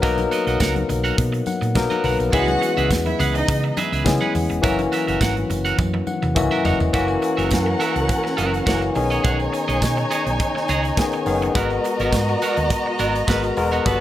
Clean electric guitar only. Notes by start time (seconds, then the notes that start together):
0.02 F#4 A#4 D#5
0.31 F#4 A#4 D#5
0.47 F#4 A#4 D#5
0.60 F#4 A#4 F#5
0.75 muted clean electric guitar stroke
0.89 muted clean electric guitar stroke
1.04 F#4 A#4 F#5
1.18 muted clean electric guitar stroke
1.33 muted clean electric guitar stroke
1.61 muted clean electric guitar stroke
1.75 muted clean electric guitar stroke
1.90 F#4 A#4 D#5
2.04 F#4 A#4 F#5
2.19 muted clean electric guitar stroke
2.32 G#4 B4 E5
2.48 muted clean electric guitar stroke
2.62 muted clean electric guitar stroke
2.77 G#4 B4 E5
2.90 muted clean electric guitar stroke
3.06 muted clean electric guitar stroke
3.20 G#4 B4 F#5
3.35 muted clean electric guitar stroke
3.49 muted clean electric guitar stroke
3.64 muted clean electric guitar stroke
3.77 G#4 B4 E5
3.92 G#4 B4 E5
4.06 muted clean electric guitar stroke
4.21 G#4 B4 F#5
4.35 muted clean electric guitar stroke
4.50 muted clean electric guitar stroke
4.63 F#4 A#4 E5
4.92 F#4 A#4 E5
5.07 F#4 A#4 E5
5.21 F#4 A#4 F#5
5.36 muted clean electric guitar stroke
5.50 muted clean electric guitar stroke
5.65 F#4 A#4 F#5
5.78 muted clean electric guitar stroke
5.94 muted clean electric guitar stroke
6.22 muted clean electric guitar stroke
6.36 muted clean electric guitar stroke
6.51 F#4 A#4 E5
6.65 F#4 A#4 F#5
6.80 muted clean electric guitar stroke
6.93 F#4 A#4 E5
7.09 muted clean electric guitar stroke
7.22 muted clean electric guitar stroke
7.37 F#4 A#4 E5
7.51 muted clean electric guitar stroke
7.66 muted clean electric guitar stroke
7.80 F#4 A#4 E5
7.96 muted clean electric guitar stroke
8.09 muted clean electric guitar stroke
8.24 muted clean electric guitar stroke
8.37 F#4 A#4 E5
8.53 muted clean electric guitar stroke
8.66 F#4 A#4 F#5
8.82 muted clean electric guitar stroke
8.96 muted clean electric guitar stroke
9.10 G#4 C#5 D#5
9.24 G#4 C#5 F#5
9.39 muted clean electric guitar stroke
9.53 muted clean electric guitar stroke
9.68 G#4 C#5 D#5
9.82 muted clean electric guitar stroke
9.97 muted clean electric guitar stroke
10.11 G#4 C#5 D#5
10.26 muted clean electric guitar stroke
10.40 muted clean electric guitar stroke
10.55 muted clean electric guitar stroke
10.69 G#4 C#5 D#5
10.85 muted clean electric guitar stroke
10.98 muted clean electric guitar stroke
11.13 muted clean electric guitar stroke
11.42 muted clean electric guitar stroke
11.56 B3 F#4 A#4
11.72 muted clean electric guitar stroke
11.85 muted clean electric guitar stroke
12.01 B3 F#4 A#4
12.14 muted clean electric guitar stroke
12.29 muted clean electric guitar stroke
12.42 B3 F#4 A#4
12.58 muted clean electric guitar stroke
12.71 muted clean electric guitar stroke
12.86 muted clean electric guitar stroke
12.99 B3 F#4 A#4
13.15 muted clean electric guitar stroke
13.28 B3 F#4 B4
13.44 muted clean electric guitar stroke
13.57 muted clean electric guitar stroke
13.72 B3 F#4 A#4
13.85 B3 F#4 B4